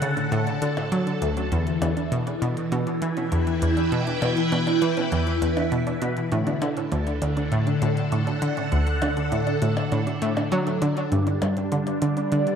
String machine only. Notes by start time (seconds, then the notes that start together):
Already playing: D3 D4 A4 F#5
1.52 E3
2.34 E4
2.93 B4
3.11 G5
6.32 D3
6.66 A4
6.95 D4
7.97 F#5
11.12 G3
11.81 B4